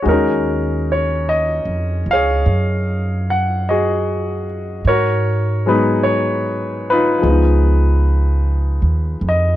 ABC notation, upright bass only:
X:1
M:4/4
L:1/8
Q:"Swing" 1/4=50
K:Ebm
V:1 name="Upright bass" clef=bass
E,,2- (3E,, F,, D,, G,,4 | A,,4 D,,2- (3D,, E,, F,, |]